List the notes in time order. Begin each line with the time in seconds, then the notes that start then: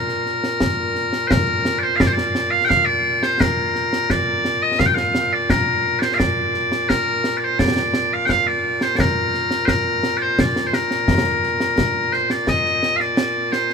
Already playing: A#2 A#4
0.09 snare
0.26 snare
0.44 snare
0.60 concert bass drum, snare
0.96 snare
1.13 snare
1.27 A#4 C5, concert bass drum, snare
1.65 snare
1.79 D5
1.83 C5
1.96 F5
2.00 D5, concert bass drum, snare
2.07 C5
2.13 D5
2.18 snare
2.35 snare
2.51 F5
2.65 F5 G5
2.70 concert bass drum, snare
2.85 D5
3.23 C5, snare
3.40 A#4, concert bass drum, snare
3.75 snare
3.93 snare
4.10 D5, concert bass drum, snare
4.45 snare
4.63 D#5
4.79 F5, concert bass drum, snare
4.86 G5
4.94 F5, snare
5.15 snare
5.33 D5
5.50 A#4, concert bass drum, snare
5.99 C5 D5, snare
6.14 D5 F5
6.20 concert bass drum, snare
6.54 snare
6.72 snare
6.89 A#4, concert bass drum, snare
7.24 snare
7.37 D5
7.44 C5
7.59 D5, concert bass drum, snare
7.77 snare
7.94 snare
8.13 F5
8.25 G5, concert bass drum, snare
8.29 F5
8.47 D5
8.81 C5, snare
8.96 A#4 D5, concert bass drum, snare
9.34 snare
9.51 snare
9.65 A#4 C5, concert bass drum, snare
10.03 snare
10.17 D5
10.22 C5
10.39 D5, concert bass drum, snare
10.56 snare
10.66 C5
10.73 A#4, snare
10.91 snare
11.08 concert bass drum, snare
11.43 snare
11.60 snare
11.78 concert bass drum, snare
12.12 C5, snare
12.30 D5, snare
12.47 D#5, concert bass drum, snare
12.65 snare
12.83 snare
12.96 F5, snare
13.00 D5
13.17 snare
13.52 C5, snare
13.70 snare